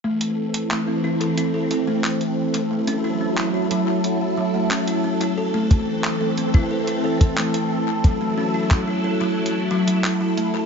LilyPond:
<<
  \new Staff \with { instrumentName = "Kalimba" } { \time 4/4 \key a \minor \tempo 4 = 90 a16 r8. a16 c'16 e'16 a'16 e'16 a'16 a'16 a16 r8. a16 | a16 cis'16 e'16 cis'16 e'16 e'16 fis16 r8. fis16 a16 cis'16 e'16 cis'16 e'16 | a'16 a16 r8. a16 c'16 e'16 a'16 e'16 a'16 a'16 a16 r8. | fis16 a16 cis'16 e'16 cis'16 e'16 e'16 fis16 r8 fis16 fis16 e'16 fis16 a16 a'16 | }
  \new Staff \with { instrumentName = "String machine" } { \time 4/4 \key a \minor << { a'1~ | a'1~ | a'1~ | a'1 | } \\ { <e c'>1 | <fis e'>1 | <e c'>1 | <fis e'>1 | } >> }
  \new DrumStaff \with { instrumentName = "Drums" } \drummode { \time 4/4 r16 hh8 hh16 hc8. hh16 hh8 hh8 hc16 hh8 hh16 | r16 hh8. <hc hh>8 hh8 hh4 <hc hh>16 hh8 hh16 | r8 <hh bd>8 <hc hh>8 hh16 bd16 r16 hh8 <hh bd>16 hc16 hh8. | <hh bd>4 <hc hh bd>4 r32 hh8 r32 hh16 hc8 hh8 | }
>>